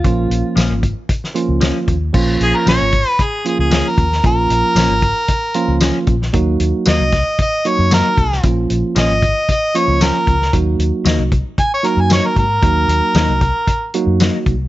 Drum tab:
CC |----------------|x---------------|----------------|----------------|
HH |x-x-x-x-x-x-x-x-|--x-x-x-x-x-x-x-|x-x-x-x-x-x-x-x-|x-x-x-x-x-x-x-x-|
TB |----x-------x---|----x-------x---|----x-------x---|----x-------x---|
SD |----o----o--o---|----o-------o--o|----o-------o--o|----o-o-----o--o|
BD |o-----o-o-----o-|o-----o-o-----o-|o-----o-o-----o-|o-----o-o-----o-|

CC |----------------|----------------|----------------|
HH |x-x-x-x-x-x-x-x-|x-x-x-x-x-x-x-x-|x-x-x-x-x-x-x-x-|
TB |----x-------x---|----x-------x---|----x-------x---|
SD |----o-------o--o|----o-------o---|----o-------o---|
BD |o-----o-o-----o-|o-----o-o-----o-|o-----o-o-----o-|